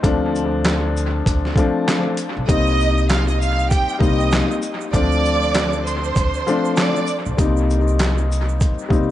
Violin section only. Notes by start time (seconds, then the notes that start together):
2.48 D#5 D#6
3.09 F5 F6
3.28 D#5 D#6
3.41 F5 F6
3.70 G4 G5
4.02 D#5 D#6
4.92 D5 D6
5.85 C5 C6
6.77 D5 D6